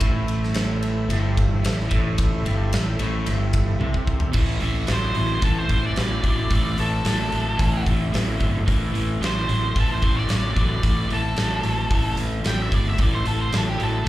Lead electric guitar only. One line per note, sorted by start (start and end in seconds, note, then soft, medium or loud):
4.93 5.44 C5 medium
5.44 5.58 A4 medium
5.58 5.84 C5 medium
5.86 6.77 D5 medium
6.80 7.84 A4 medium
9.25 9.76 C5 medium
9.80 9.91 A4 medium
9.92 10.17 C5 medium
10.16 11.08 D5 medium
11.13 12.17 A4 medium
12.47 12.62 G5 medium
12.62 12.74 E5 medium
12.74 12.87 D5 medium
12.90 13.02 E5 medium
13.02 13.14 D5 medium
13.15 13.27 C5 medium
13.27 13.40 A4 medium
13.41 13.54 C5 medium
13.58 13.69 A4 medium
13.69 13.81 G4 medium
13.84 14.09 A4 medium